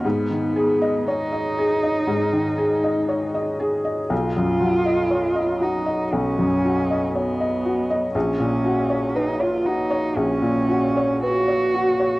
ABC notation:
X:1
M:4/4
L:1/16
Q:1/4=59
K:Abdor
V:1 name="Felt piano"
A,, E, A e d e A e A,, E, A e d e A e | =B,,, ^F,, ^F, ^d ^c d ^F d B,,, F,, F d c d F d | B,,, B,, G d c d G d B,,, B,, G d c d G d |]
V:2 name="Cello"
C4 E8- E2 z2 | F6 ^D2 ^C4 =B,4 | D4 E F E2 D4 G4 |]